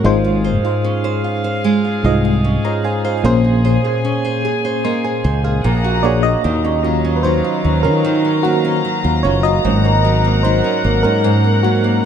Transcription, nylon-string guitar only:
Already playing: C#4 F#4 A#4
0.04 G#3
0.24 F4
0.44 C5
0.65 F4
0.84 C#4
1.04 C5
1.24 F4
1.44 C5
1.64 G#3
1.84 F4
2.05 C5
2.25 F4
2.44 C#4
2.65 C5
2.84 F4
3.05 C5
3.24 A#3
3.44 G#4
3.65 C5
3.84 G#4
4.05 C#4
4.25 C5
4.45 G#4
4.65 C5
4.85 A#3
5.04 G#4
5.24 C5
5.44 G#4
5.64 A#2
5.84 F#4
6.04 D4
6.24 F#4
6.44 D#3
6.64 C#4
6.84 F#3
7.04 C#4
7.24 F#3
7.44 F4
7.64 C#4
7.84 F4
8.05 D#3
8.25 C#4
8.45 F#3
8.65 C#4
8.85 F#3
9.04 F4
9.25 C#4
9.45 F4
9.65 G#2
9.85 A#3
10.05 F#3
10.24 A#3
10.44 F#3
10.64 C#4
10.84 A#3
11.04 C#4
11.24 G#2
11.44 A#3
11.64 F#3
11.84 A#3

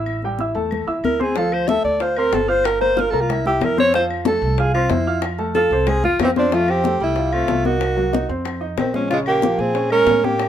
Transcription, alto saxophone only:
1.05 A#4
1.22 G#4
1.38 A4
1.53 C5
1.68 E5
1.84 D5
2.02 C5
2.18 A#4
2.34 A4
2.49 C5
2.66 A#4
2.81 C5
3.00 A#4
3.10 A4
3.21 F4
3.32 E4
3.47 G4
3.65 A#4
3.80 C#5
3.95 C5
4.28 A4
4.60 G#4
4.74 F4
4.91 E4
5.55 A4
5.88 G#4
6.05 F4
6.25 C4
6.39 D4
6.54 F4
6.70 G4
7.04 E4
7.33 F4
7.66 F#4
8.79 C4
8.96 C#4
9.10 F4
9.27 G4
9.59 G#4
9.92 A#4
10.25 G4

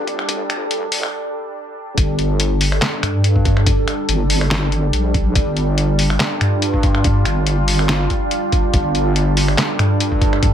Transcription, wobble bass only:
0.07 G1
0.66 F#1
0.92 G1
1.98 G1
3.03 G2
4.09 G1
4.93 A#1
5.36 G1
6.41 G2
7.26 G1
8.74 G1
9.79 G2

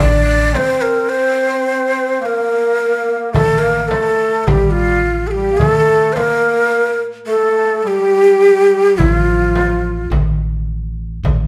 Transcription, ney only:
0.00 D5
0.56 C5
0.82 A#4
1.09 C5
2.22 A#4 C5
3.33 A4
3.59 A#4
3.88 A4
4.44 G4 A4
4.71 F4
5.27 G4 A4
5.57 A4
6.13 C5
6.17 A#4
7.27 A4
7.83 A4
7.87 G4
8.98 E4
9.12 F4

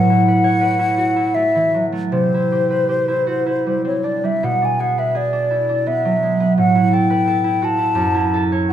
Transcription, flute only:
Already playing: F#5
1.35 E5
2.12 C5
3.86 C#5
4.05 D5
4.25 E5
4.44 F#5
4.65 G#5
4.80 F#5
4.99 E5
5.17 D5
5.87 E5
6.58 F#5
6.94 G5
7.65 A5
8.69 F#5

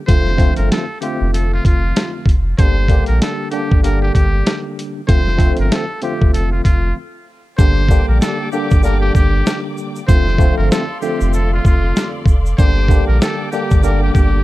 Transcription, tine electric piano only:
0.07 F2 D3 F3 A3 C4 F4
0.37 F2 D3 F3 A3 C4 F4
1.01 F2 D3 F3 A3 C4 F4
2.58 D3 G3 A#3 D4 G4
2.89 D3 G3 A#3 D4 G4
3.52 D3 G3 A#3 D4 G4
3.83 D3 G3 A#3 D4 G4
5.07 F2 D3 F3 A3 C4 F4
5.37 F2 D3 F3 A3 C4 F4
6.02 F2 D3 F3 A3 C4 F4
7.58 D3 G3 A#3 D4 G4
7.89 D3 G3 A#3 D4 G4
8.52 D3 G3 A#3 D4 G4
8.83 D3 G3 A#3 D4 G4
10.07 F2 D3 F3 A3 C4 F4
10.37 F2 D3 F3 A3 C4 F4
11.01 F2 D3 F3 A3 C4 F4
12.58 D3 G3 A#3 D4 G4
12.89 D3 G3 A#3 D4 G4
13.52 D3 G3 A#3 D4 G4
13.83 D3 G3 A#3 D4 G4

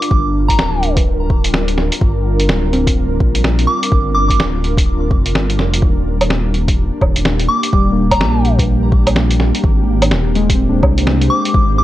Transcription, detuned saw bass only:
0.11 G1
0.59 D1
2.01 G1
2.49 D1
3.20 A#1
3.92 G1
4.40 D1
5.11 F1
5.35 G1
5.59 F1
5.82 D#1
7.01 D#1
7.73 D#1
8.21 A#1
9.64 G#1
10.12 D#1
10.83 C2
11.54 G#1

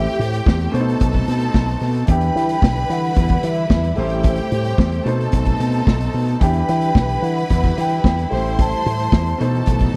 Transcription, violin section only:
Already playing: G4 G5
0.74 A4 A5
2.09 B4 B5
3.98 G4 G5
5.06 A4 A5
6.42 B4 B5
8.32 C5 C6
9.40 A4 A5

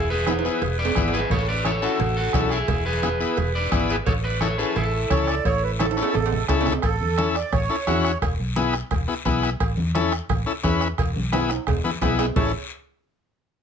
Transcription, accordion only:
5.11 C#5
5.28 D5
5.45 C#5
5.63 B4
5.81 A4
6.84 A4
7.36 D5
7.52 C#5
12.37 C#5

